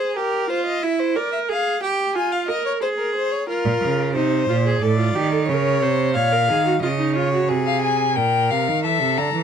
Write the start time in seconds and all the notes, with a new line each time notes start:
Already playing: G#4 C5
0.16 G4 A#4
0.49 F4 C5
0.66 D#5
0.83 E4 E5
0.99 C5
1.16 A#4 D5
1.32 E5
1.49 G#4 F5
1.82 G4 G5
2.15 F4 G#5
2.32 F5
2.48 A#4 D#5
2.66 C#5
2.82 G#4 C5
2.98 A#4
3.15 C5
3.32 C#5
3.48 F4 A#4
3.65 A#2
3.82 C#3
4.15 C3 D#4 C5
4.49 A#2 F4
4.66 G#4
4.82 A2 A4 D5
4.99 F4
5.15 D#3 G4
5.32 A4
5.48 C#3 A#4 C#5
5.82 C3 C5
6.15 A#2 C#5 F5
6.32 A#4
6.49 D#3 G#4
6.66 F#4
6.82 C#3 F4 D#5
6.99 D#4
7.16 F4 C#5
7.33 F#4
7.49 C3 G#4
7.66 F5
7.82 G#5
8.16 A#2 A#4 G5
8.50 C3 F5
8.68 D#3
8.84 E3 A4 E5
9.01 C3
9.18 D3 A#5
9.34 E3